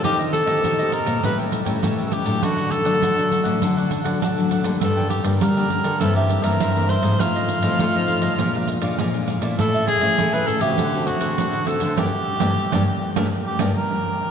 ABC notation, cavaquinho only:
X:1
M:4/4
L:1/16
Q:1/4=101
K:Gm
V:1 name="Cavaquinho"
[EGce] [Gce] z [Gce] [EGce] [Gce]2 [Gce] [GA^cg] [Acg] z [Acg] [GAcg]2 [GAcg] [Acg] | [DAd^f] [Adf] z [Adf] [DAdf] [Adf]2 [Adf] [DAdf] [Adf] z [Adf] [DAdf]2 [DAdf] [Adf] | [DBdg] [Bdg] z [Bdg] [DBdg] [Bdg]2 [Bdg] [=EBc=e] [Bce] z [Bce] [EBce]2 [EBce] [Bce] | [FAce] [Ace] z [Ace] [FAce] [Ace]2 [Ace] [_ABdf] [Bdf] z [Bdf] [ABdf]2 [ABdf] [Bdf] |
[=EA^c=e] [Ace] z [Ace] [EAce] [Ace]2 [Ace] [DA=c^f] [Acf] z [Acf] [DAcf]2 [DAcf] [Acf] | [Bdg] z2 [Bdg] z [Bdg] z2 [Bdg] z2 [Bdg] z4 |]